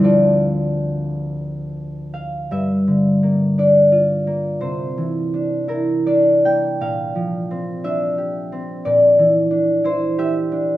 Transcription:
harp
Already playing: D2 F3 C4
0.01 D4 F4 A4 D5
2.14 F5
2.51 G2 E5
2.87 D3
3.23 A#3
3.58 D4 D5
3.92 F4
4.27 A#3
4.60 C3 C5
4.98 E3
5.34 D4
5.68 E4 A#4
6.07 D4 D5
6.45 A#3 G5
6.81 A#2 F5
7.15 F3
7.51 C4
7.84 D4 E5
8.18 G4
8.52 C4
8.85 A#2 D5
9.19 E3
9.51 D4
9.84 E4 C5
10.18 G4 E5
10.52 D4

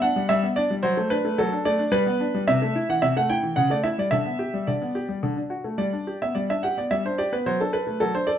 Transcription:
grand piano
0.02 D4 F#5
0.16 G3
0.29 G3 E5
0.43 B3
0.56 D4 D5
0.71 G3
0.83 F#3 C5
0.97 A3
1.10 D4 B4
1.25 A3
1.38 F#3 A4
1.52 D4
1.65 A3 D5
1.79 D4
1.92 G3 B4
2.06 B3
2.20 D4
2.35 G3
2.48 C3 E5
2.62 A3
2.75 E4
2.89 E3 F#5
3.02 C3 E5
3.17 A3 F#5
3.30 E4 G5
3.43 E3
3.56 C#3 F#5
3.70 A3 D5
3.84 E4 E5
3.98 G3 D5
4.11 D3 E5
4.26 B3
4.39 G4
4.54 G3
4.67 D3 D5
4.82 B3
4.95 G4
5.09 G3
5.23 D3
5.37 D4
5.50 F#4
5.64 A3
5.78 G3 D5
5.93 D4
6.07 G4
6.22 B3 E5
6.35 G3 D5
6.49 D4 E5
6.63 G4 F#5
6.77 B3 D5
6.91 G3 E5
7.05 D4 C5
7.18 G4 D5
7.32 B3 B4
7.46 F#3 C5
7.60 D4 A4
7.73 A4 B4
7.87 A3
8.00 F#3 A4
8.14 D4 C5
8.27 A4 D5

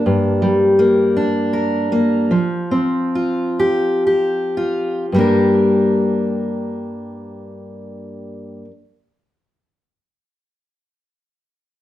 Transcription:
steel-string acoustic guitar
Already playing: A#3 D4
0.06 G2
0.42 G3
0.79 A#3
1.17 D4
1.53 A#4
1.92 A#3
2.31 F3
2.71 C4
3.15 F4
3.60 G4
4.07 G4
4.57 F4
5.12 G2 G3 A#3
5.19 D4 A#4

